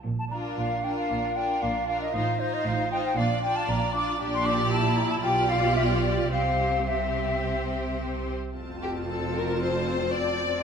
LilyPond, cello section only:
\new Staff \with { instrumentName = "Cello section" } { \clef bass \time 4/4 \key bes \major \tempo 4 = 114 bes,4 bes,4 bes,4 bes,4 | a,4 a,4 bes,4 bes,4 | \key f \major bes,2 b,2 | c2.~ c8 r8 |
f,1 | }